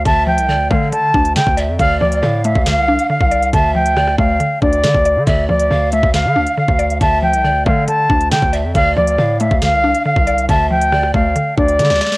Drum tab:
HH |x-----x---------x-----x-x---x---|x-----x-----x---x-----x-----x-x-|x-----x---------x-----x-x---x---|x-----x-----x---x-----x-----x-x-|
SD |------------------------o-------|----------------o---------------|--------r-r-------------o-------|----------------o---------------|
BD |o-----------o-------o-----o-----|o-------------o-----------o-----|o-----------o-------o-----o-----|o-------------o-----------o-----|

HH |x-----x---------x-----x-x---x---|x-----x-----x---x-----x-----x-x-|x-----x---------x-----x-x---x---|
SD |------------------------o-------|----------------o---------------|--------r-r-------------ooooooo-|
BD |o-----------o-------o-----o-----|o-------------o-----------o-----|o-----------o-------o-----------|